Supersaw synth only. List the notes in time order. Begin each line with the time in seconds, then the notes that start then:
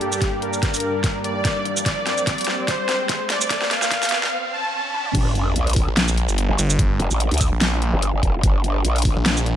0.01 G4
0.42 A#4
1.24 D5
1.86 D5
2.68 C5
3.30 D5
3.71 F5
4.53 A5